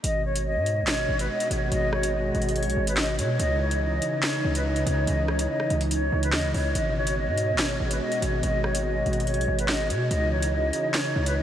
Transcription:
0.04 G#1 B2 G#3 F#4 D#5, closed hi-hat
0.25 C#5
0.36 closed hi-hat
0.46 D#5
0.56 G#2
0.66 closed hi-hat
0.82 G#1
0.87 C#5, snare, clap, closed hi-hat
1.09 G#1
1.19 B4, closed hi-hat
1.30 D#5
1.40 closed hi-hat
1.51 G#1 C#5, closed hi-hat
1.72 G#1 D#5, closed hi-hat
1.93 C#5, cross-stick
2.03 closed hi-hat
2.14 D#5
2.35 G#1, closed hi-hat
2.42 closed hi-hat
2.49 closed hi-hat
2.55 C#5, closed hi-hat
2.63 B1, closed hi-hat
2.70 closed hi-hat
2.77 G#1
2.87 B4, closed hi-hat
2.97 D#5, snare, clap
3.19 B2 C#5, closed hi-hat
3.39 C#2 C#3 E3 D#4 D#5, closed hi-hat
3.60 C#5
3.71 closed hi-hat
3.82 D#5
4.02 closed hi-hat
4.23 C#5, snare, clap, closed hi-hat
4.44 C#2
4.55 B4, closed hi-hat
4.65 D#5
4.76 closed hi-hat
4.86 C#2 C#5, closed hi-hat
5.07 C#2 D#5, closed hi-hat
5.28 C#5, cross-stick
5.39 closed hi-hat
5.49 D#5
5.60 cross-stick
5.70 C#2, closed hi-hat
5.81 closed hi-hat
5.91 C#5, closed hi-hat
6.12 C#2
6.23 B4, closed hi-hat
6.32 D#2 D#5, snare, clap
6.44 C#2
6.54 C#2 C#5, open hi-hat
6.75 G#1 B2 G#3 F#4 D#5, closed hi-hat
6.96 C#5
7.07 closed hi-hat
7.17 D#5
7.28 G#2
7.38 closed hi-hat
7.54 G#1
7.58 C#5, snare, clap, closed hi-hat
7.80 G#1
7.91 B4, closed hi-hat
8.01 D#5
8.12 closed hi-hat
8.22 G#1 C#5, closed hi-hat
8.43 G#1 D#5, closed hi-hat
8.64 C#5, cross-stick
8.75 closed hi-hat
8.85 D#5
9.06 G#1, closed hi-hat
9.13 closed hi-hat
9.20 closed hi-hat
9.27 C#5, closed hi-hat
9.34 B1, closed hi-hat
9.41 closed hi-hat
9.48 G#1
9.59 B4, closed hi-hat
9.68 D#5, snare, clap
9.90 B2 C#5, closed hi-hat
10.11 C#2 C#3 E3 D#4 D#5, closed hi-hat
10.31 C#5
10.43 closed hi-hat
10.53 D#5
10.73 closed hi-hat
10.94 C#5, snare, clap, closed hi-hat
11.16 C#2
11.26 B4, closed hi-hat
11.37 D#5

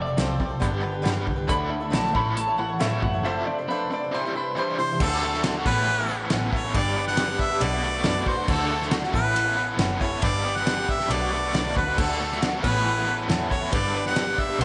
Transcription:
Already playing: F1 F2 C3
0.02 D5
0.06 C4 A4 D5
0.17 C2 F2 C3 F3 A3 C4 A4 C5 D5, snare, closed hi-hat
0.39 F2 C3 A3 C4 A4 D5, kick
0.49 C4 A4 D5
0.60 G1 G2 D3 G3 B3 D4 G4 B4, kick, closed hi-hat
0.71 D4 G4 B4
0.81 G2 D3 B3 D4 G4 B4
0.92 D4 G4 B4
1.02 G2 D3 G3 B3 D4 G4 B4, snare, closed hi-hat
1.14 D4 G4 B4
1.26 C2 G2 D3, kick
1.36 D4 G4 B4
1.47 D2 D3 F#3 A3 D4 E4 A4 B5, kick, closed hi-hat
1.70 D3 A3
1.80 A3 D4 E4 A4
1.90 A#1 D3 F#3 A3 D4 E4 A4, snare, closed hi-hat
1.94 A5
2.05 snare
2.14 A1 A2 E3 A3 E4 A4 C#5 B5, kick
2.37 A2 E3 A5, closed hi-hat
2.47 A3 E4 A4 C#5
2.57 A2 E3 A3 E4 A4 C#5 F#5
2.68 A3 E4 A4 C#5
2.79 A2 E3 A3 E4 A4 C#5 E5, snare, closed hi-hat
2.90 A3 E4 A4 C#5
3.02 F#1 A2 E3 F#5, kick
3.13 A3 E4 A4 C#5
3.24 F2 C3 F3 A3 D4 A4 C5 E5
3.47 F2 C3 D5
3.58 D4 A4 C5
3.68 F2 C3 F3 A3 D4 A4 B4 C5
3.90 F2 C3 A3 D4 A4 C5 D5
4.03 D4 A4 C5
4.14 C3 E3 G3 D4 E4 C5
4.25 G3 D4 E4 C5
4.34 C3 E3 G3 D4 E4 B4 C5
4.57 C3 E3 G3 D4 E4 C5
4.70 G3 D4 E4 C5
4.78 C3 E3 C5
4.92 G3 D4 E4 C5
5.00 D2 D3 A3 D4 A4, kick, crash
5.04 F#4
5.24 A3 D4 F#4 A4
5.34 snare
5.44 D3 A3 D4 F#4 A4, snare, ride bell
5.56 D4 F#4 A4
5.66 A1 A2 E3 B3 C#4 E4 A4 B4, kick, crash
5.87 E3
5.98 B3 C#4 E4 A4
6.10 B3 C#4 E4 A4
6.30 A1 A2 E3 B3 C#4 E4 A4, snare, ride bell
6.52 B3 C#4 E4 A4 C#5, kick
6.64 B3 C#4 E4 A4
6.73 G1 G2 G3 D4 G4 B4 D5, kick, ride bell
6.96 G3 B3 D4 G4
7.00 B4
7.08 F#5, snare
7.17 G3 D4 G4 B4, snare, ride bell
7.28 D4 G4 B4
7.39 D4 E5, kick
7.49 D4 G4 B4
7.61 B1 B2 F#3 A3 D4 F#4 B4 D5, ride bell
7.72 A3 D4 F#4 B4
7.82 A3 D4 F#4 B4
8.04 F#2 B2 F#3 A3 D4 F#4 B4, snare, ride bell
8.25 A3 D4 F#4 B4 C5, kick
8.36 A3 D4 F#4 B4
8.47 D2 D3 A3 D4 F#4 A4, kick, crash
8.69 A3 D4 F#4 A4
8.82 snare
8.90 D3 A3 D4 F#4 A4, snare, ride bell
9.03 D4 F#4 A4, snare
9.13 A1 A2 E3 B3 C#4 E4 A4 B4, kick
9.36 E3, ride bell
9.45 B3 C#4 E4 A4
9.56 B3 C#4 E4 A4
9.78 F#1 A2 E3 B3 C#4 E4 A4, snare, ride bell
9.99 B3 C#4 E4 A4 C#5, kick
10.11 B3 C#4 E4 A4
10.22 G1 G2 G3 D4 G4 B4 D5, kick, ride bell
10.44 G3 B3 D4 G4 B4
10.56 F#5, snare
10.66 G3 D4 G4 B4, snare, ride bell
10.78 D4 G4 B4
10.88 D4 E5, kick
10.98 D4 G4 B4, snare
11.09 B1 B2 F#3 A3 D4 F#4 B4 D5, ride bell
11.20 A3 D4 F#4 B4
11.30 A3 D4 F#4 B4
11.53 B1 B2 F#3 A3 D4 F#4 B4, snare, ride bell
11.75 D2 A3 D4 F#4 B4, kick
11.86 A3 D4 F#4 B4
11.97 D2 D3 A3 D4 F#4 A4, kick, crash
12.18 A3 D4 F#4 A4
12.32 snare
12.42 D3 A3 D4 F#4 A4, snare, ride bell
12.52 D4 F#4 A4
12.62 A1 A2 E3 B3 C#4 E4 A4 B4, kick, crash
12.86 E3
12.97 B3 C#4 E4 A4
13.06 B3 C#4 E4 A4
13.28 E2 A2 E3 B3 C#4 E4 A4, snare, ride bell
13.48 B3 C#4 E4 A4 C#5, kick
13.61 B3 C#4 E4 A4
13.70 G1 G2 G3 D4 G4 B4, kick, ride bell
13.74 D5
13.94 G3 B3 D4 G4 B4
14.06 F#5, snare
14.16 G3 D4 G4 B4, snare, ride bell
14.25 D4 G4 B4
14.38 D4 E5, kick
14.49 D4 G4 B4
14.59 B1 B2 F#3 A3 D4, ride bell

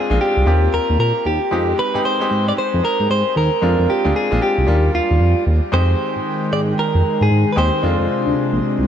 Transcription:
Already playing: G#3 C4 D4 F4 G#4
0.10 A#1 G#3 C4 D4 F4
0.21 G4
0.37 C2
0.46 D#2 A#3 C4 F4 G4
0.73 D#2 A#4
0.90 D#2
0.99 A#2 A#4
1.25 D#2 G4
1.51 F2 G#3 C4 D#4 G4
1.79 B4
1.94 G#2 G#3 C4 D#4 G4
2.05 C5
2.20 G#3 C4 D#4 G4
2.30 G#2
2.48 D5
2.58 C5
2.74 F2
2.85 A#4
3.00 G#2
3.09 G#2 C5
3.36 D#2 A#4
3.62 F2 G#3 C4 D4 F4
3.79 F2
3.90 G4
4.05 D2 G#3 C4 D4 F4
4.16 G#4
4.31 A#1 G#3 C4 D4 F4
4.42 G4
4.58 C2
4.67 D#2 G3 A#3 D4 F4
4.94 D#2 F4
5.11 D#2
5.20 F2
5.46 D#2
5.72 F2 D#3 G#3 C4 D#4 G4 C5 G5
6.16 G#2
6.52 G#2 D5
6.79 A#4
6.95 F2
7.21 G#2 G#4
7.31 G#2
7.52 G#3 C4 B4
7.57 D#2 D#4 G4 C5
7.82 F2 C3 G#3 C4 D4 F4
8.00 F2
8.26 D2
8.52 A#1
8.79 C2

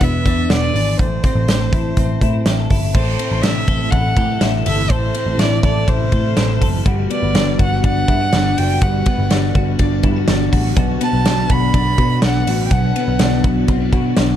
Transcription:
Already playing: E3 D4 G#4
0.01 E1 B3 E5, kick, closed hi-hat
0.25 E2 D4, kick, closed hi-hat
0.50 E1 F#4 D5, snare, closed hi-hat
0.61 G#4
0.74 G#1 D4, open hi-hat
0.99 A1 A2 C5, kick, closed hi-hat
1.23 C4, kick, closed hi-hat
1.35 A1
1.48 A1 G4, snare, closed hi-hat
1.60 A4
1.73 A1 E4, kick, closed hi-hat
1.97 A1 C4, kick, closed hi-hat
2.21 A2 E4, kick, closed hi-hat
2.46 A1 G4, snare, closed hi-hat
2.59 A4
2.70 G1 E4, kick, open hi-hat
2.94 A1 A2 C3 E3 A3 E4 A4 C5, kick, crash
3.19 C4, ride
3.32 A1
3.42 A1 D4 E5, snare, ride
3.56 E4
3.68 A1 A4, kick, ride
3.90 A1 E4 F#5, kick, ride
4.17 A2 G4, kick, ride
4.29 A4
4.41 A1 E4, snare, ride
4.66 G1 A4 E5, open hi-hat, ride
4.90 A1 A2 A4 C5, kick, ride
5.15 C4, ride
5.26 A1
5.38 A1 E4 D5, snare, ride
5.63 A1 A4 D5, kick, ride
5.88 A1 E4 C5, kick, ride
6.12 A2 A4, kick, ride
6.36 A1 D4, snare, ride
6.48 E4
6.61 F#1 A4, kick, open hi-hat, ride
6.85 G1 D3 G3 B3 F#4, kick, ride
7.10 B3 D5, ride
7.23 G1
7.34 G1 D4, snare, ride
7.59 G1 F#4 F#5, kick, ride
7.83 G1 D4 F#5, kick, ride
8.08 G2 E4, kick, ride
8.21 F#4
8.33 G1 D4, snare, ride
8.57 F#1 F#4 G5, open hi-hat, ride
8.81 G1 G3 F#4 F#5, kick, ride
9.06 B3, kick, ride
9.19 G1
9.30 G1 D4, snare, ride
9.55 G1 F#4, kick, ride
9.79 G1 D4, kick, ride
10.03 G2 E4, kick, ride
10.16 F#4
10.28 G1 D4, snare, ride
10.52 A1 F#4, kick, open hi-hat, ride
10.76 B1 B2 F#3 B3 F#4, kick, hi-hat pedal, ride
11.01 B3 A5, ride
11.13 B1
11.25 B1 D4, snare, ride
11.50 B1 F#4 B5, kick, ride
11.73 B1 D4, kick, ride
11.98 B2 F#4, kick, ride
12.22 B1 D4 F#5, snare, ride
12.47 A1 F#4, open hi-hat, ride
12.65 G5
12.71 B1 B2 E4 F#4 F#5, kick, ride
12.96 B3, ride
13.08 B1
13.19 B1 D4, snare, ride
13.44 B1 F#4, kick, ride
13.68 B1 C4, kick, ride
13.81 D4
13.93 B2 F#4, kick, ride
14.16 B1 D4, snare, ride

